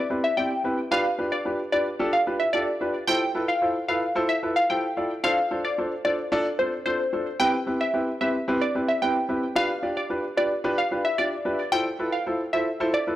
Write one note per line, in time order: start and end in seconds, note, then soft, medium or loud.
0.10 0.23 C4 medium
0.10 0.23 E4 medium
0.10 0.23 G4 medium
0.10 0.24 B4 medium
0.24 0.35 E5 medium
0.37 0.50 C4 medium
0.37 0.50 E4 medium
0.37 0.51 G4 medium
0.37 0.51 D5 medium
0.37 0.75 G5 medium
0.64 0.77 C4 medium
0.64 0.78 E4 medium
0.64 0.78 G4 medium
0.64 0.78 B4 medium
0.91 1.04 D4 medium
0.91 1.05 F4 medium
0.91 1.05 G4 medium
0.91 1.05 B4 loud
0.91 1.02 F5 loud
1.18 1.32 D4 medium
1.18 1.32 F4 medium
1.18 1.32 G4 medium
1.18 1.32 B4 medium
1.32 1.54 D5 medium
1.45 1.59 D4 medium
1.45 1.59 F4 medium
1.45 1.59 G4 medium
1.45 1.59 B4 medium
1.72 1.86 D4 medium
1.72 1.86 F4 medium
1.72 1.86 G4 medium
1.72 1.86 B4 medium
1.72 1.83 D5 medium
1.99 2.13 D4 medium
1.99 2.13 F4 medium
1.99 2.13 G4 medium
1.99 2.13 A4 loud
2.13 2.24 F5 medium
2.27 2.40 D4 medium
2.27 2.40 F4 medium
2.27 2.40 G4 medium
2.27 2.40 B4 medium
2.40 2.51 E5 medium
2.53 2.67 D4 medium
2.53 2.67 F4 medium
2.53 2.67 G4 medium
2.53 2.67 A4 medium
2.53 2.91 D5 medium
2.81 2.94 D4 medium
2.81 2.94 F4 medium
2.81 2.94 G4 medium
2.81 2.94 B4 medium
3.07 3.21 E4 medium
3.07 3.21 F4 medium
3.07 3.21 A4 medium
3.07 3.21 C5 loud
3.07 3.18 G5 loud
3.35 3.48 E4 medium
3.35 3.48 F4 medium
3.35 3.48 A4 medium
3.35 3.48 B4 medium
3.48 3.70 F5 medium
3.62 3.75 E4 medium
3.62 3.75 F4 medium
3.62 3.75 A4 medium
3.62 3.75 C5 medium
3.88 4.02 E4 medium
3.88 4.02 F4 medium
3.88 4.02 A4 medium
3.88 4.02 B4 medium
3.88 3.99 F5 medium
4.15 4.29 E4 medium
4.15 4.29 F4 medium
4.15 4.29 A4 medium
4.15 4.29 C5 loud
4.29 4.40 E5 medium
4.43 4.56 E4 medium
4.43 4.56 F4 medium
4.43 4.56 A4 medium
4.43 4.56 B4 medium
4.56 4.67 F5 medium
4.70 4.83 E4 medium
4.70 4.83 F4 medium
4.70 4.83 A4 medium
4.70 4.83 C5 medium
4.70 5.08 G5 medium
4.97 5.10 E4 medium
4.97 5.10 F4 medium
4.97 5.10 A4 medium
4.97 5.10 D5 medium
5.24 5.37 D4 medium
5.24 5.37 F4 medium
5.24 5.37 A4 medium
5.24 5.37 C5 loud
5.24 5.35 F5 loud
5.51 5.64 D4 medium
5.51 5.64 F4 medium
5.51 5.64 A4 medium
5.51 5.64 C5 medium
5.65 5.86 D5 medium
5.78 5.91 D4 medium
5.78 5.91 F4 medium
5.78 5.91 A4 medium
5.78 5.91 C5 medium
6.05 6.18 D4 medium
6.05 6.18 F4 medium
6.05 6.18 A4 medium
6.05 6.18 C5 medium
6.05 6.16 D5 medium
6.32 6.45 D4 loud
6.32 6.45 F4 loud
6.32 6.45 A4 loud
6.32 6.45 D5 loud
6.59 6.72 D4 medium
6.59 6.72 F4 medium
6.59 6.72 A4 medium
6.59 6.81 C5 medium
6.59 6.72 C5 medium
6.86 6.99 D4 medium
6.86 6.99 F4 medium
6.86 6.99 A4 medium
6.86 7.24 C5 medium
6.86 6.99 C5 medium
7.13 7.26 D4 medium
7.13 7.26 F4 medium
7.13 7.26 A4 medium
7.13 7.26 C5 medium
7.40 7.53 C4 medium
7.40 7.53 E4 medium
7.40 7.53 G4 medium
7.40 7.53 B4 loud
7.40 7.51 G5 loud
7.67 7.80 C4 medium
7.67 7.80 E4 medium
7.67 7.80 G4 medium
7.67 7.80 B4 medium
7.81 8.02 E5 medium
7.94 8.07 C4 medium
7.94 8.07 E4 medium
7.94 8.07 G4 medium
7.94 8.07 B4 medium
8.21 8.34 C4 medium
8.21 8.34 E4 medium
8.21 8.34 G4 medium
8.21 8.34 B4 medium
8.21 8.32 E5 medium
8.48 8.61 C4 medium
8.48 8.61 E4 medium
8.48 8.61 G4 medium
8.48 8.61 B4 loud
8.61 8.72 D5 medium
8.75 8.88 C4 medium
8.75 8.88 E4 medium
8.75 8.88 G4 medium
8.75 8.89 B4 medium
8.88 8.99 E5 medium
9.02 9.15 C4 medium
9.02 9.15 E4 medium
9.02 9.15 G4 medium
9.02 9.15 B4 medium
9.02 9.40 G5 medium
9.29 9.42 C4 medium
9.29 9.42 E4 medium
9.29 9.42 G4 medium
9.29 9.42 B4 medium
9.55 9.69 D4 medium
9.55 9.69 F4 medium
9.55 9.69 G4 medium
9.55 9.69 B4 loud
9.55 9.67 F5 loud
9.83 9.96 D4 medium
9.83 9.96 F4 medium
9.83 9.96 G4 medium
9.83 9.96 D5 medium
9.97 10.18 D5 medium
10.10 10.23 D4 medium
10.10 10.23 F4 medium
10.10 10.23 G4 medium
10.10 10.23 B4 medium
10.37 10.50 D4 medium
10.37 10.50 F4 medium
10.37 10.50 G4 medium
10.37 10.51 B4 medium
10.37 10.48 D5 medium
10.64 10.77 D4 medium
10.64 10.77 F4 medium
10.64 10.77 G4 medium
10.64 10.78 B4 loud
10.78 10.89 F5 medium
10.91 11.04 D4 medium
10.91 11.05 F4 medium
10.91 11.05 G4 medium
10.91 11.05 B4 medium
11.05 11.16 E5 medium
11.18 11.31 D4 medium
11.18 11.32 F4 medium
11.18 11.32 G4 medium
11.18 11.56 D5 medium
11.18 11.32 D5 medium
11.45 11.58 D4 medium
11.45 11.58 F4 medium
11.45 11.59 G4 medium
11.45 11.59 B4 medium
11.72 11.85 E4 medium
11.72 11.85 F4 medium
11.72 11.86 A4 medium
11.72 11.86 C5 loud
11.72 11.83 G5 loud
11.99 12.12 E4 medium
11.99 12.13 F4 medium
11.99 12.13 A4 medium
11.99 12.13 B4 medium
12.12 12.34 F5 medium
12.26 12.40 E4 medium
12.26 12.40 F4 medium
12.26 12.40 A4 medium
12.26 12.40 C5 medium
12.53 12.67 E4 medium
12.53 12.67 F4 medium
12.53 12.67 A4 medium
12.53 12.67 C5 medium
12.53 12.64 E5 medium
12.80 12.94 E4 medium
12.80 12.94 F4 medium
12.80 12.94 A4 medium
12.80 12.94 C5 loud
12.94 13.05 D5 medium
13.07 13.16 E4 medium
13.07 13.16 F4 medium
13.07 13.16 A4 medium
13.07 13.16 B4 medium